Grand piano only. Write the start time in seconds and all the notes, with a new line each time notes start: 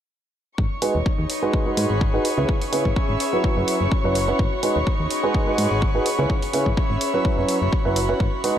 0.82 G#3 D#4 F#4 G#4 B4
1.42 G#3 D#4 F#4 G#4 B4
1.66 G#3 D#4 F#4 G#4 B4
2.14 D#4 F#4 G#4 B4
2.38 C#3 C#4 E4 G#4 B4
2.72 C#3 C#4 E4 G#4 B4
3.33 F#3 C#4 E4 F#4 B4
3.57 F#3 C#4 E4 F#4 B4
4.04 F#3 C#4 E4 F#4 B4
4.28 C#4 E4 F#4 B4
4.63 G#3 D#4 F#4 G#4 B4
5.23 G#3 D#4 F#4 G#4 B4
5.47 G#3 D#4 F#4 G#4 B4
5.95 D#4 F#4 G#4 B4
6.19 C#3 C#4 E4 G#4 B4
6.53 C#3 C#4 E4 G#4 B4
7.14 F#3 C#4 E4 F#4 B4
7.38 F#3 C#4 E4 F#4 B4
7.85 F#3 C#4 E4 F#4 B4
8.09 C#4 E4 F#4 B4
8.44 G#3 D#4 F#4 G#4 B4